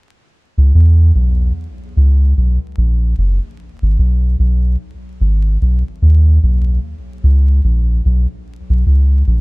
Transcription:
0.58 0.73 C#2 loud
0.75 1.12 E2 loud
1.15 1.52 B1 medium
1.97 2.33 C#2 loud
2.37 2.59 B1 medium
2.78 3.14 A#1 medium
3.18 3.40 F#1 medium
3.82 3.97 G#1 loud
3.99 4.36 B1 medium
4.39 4.76 B1 medium
5.21 5.58 G#1 loud
5.62 5.83 B1 medium
6.02 6.39 D#2 medium
6.43 6.80 B1 medium
7.24 7.60 C#2 loud
7.64 8.01 A#1 medium
8.05 8.27 B1 loud
8.70 8.84 B1 medium
8.86 9.23 C#2 medium
9.27 9.41 A#1 medium

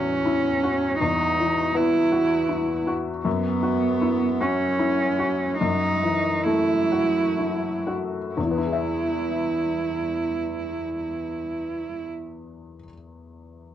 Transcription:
0.00 0.97 E2 soft
0.00 0.99 C#4 medium
0.00 0.26 E4 soft
0.00 0.63 F#4 soft
0.26 0.86 E4 soft
0.63 1.24 F#4 soft
0.99 3.22 E2 soft
0.99 1.77 D#4 medium
1.39 1.98 E3 soft
1.75 2.35 B3 soft
1.75 2.88 E4 medium
2.12 2.72 F#4 soft
2.49 3.10 E4 soft
2.87 3.25 F#4 soft
3.25 5.56 F#2 soft
3.25 4.42 B3 medium
3.63 4.25 F#4 soft
4.02 4.64 E4 soft
4.41 5.58 C#4 medium
4.41 5.04 F#4 soft
4.79 5.44 E4 soft
5.19 5.85 F#4 soft
5.59 8.33 F#2 soft
5.59 6.45 D#4 medium
6.03 6.73 E3 soft
6.44 7.19 A3 soft
6.44 7.86 E4 medium
6.92 7.67 F#4 soft
7.39 8.18 E4 soft
7.87 8.37 F#4 soft
8.35 12.75 E2 soft
8.35 12.04 E4 soft
8.45 12.79 E3 soft
8.51 12.82 B3 soft
8.58 12.85 E4 soft
8.65 12.89 G#4 soft
8.72 12.93 E5 soft

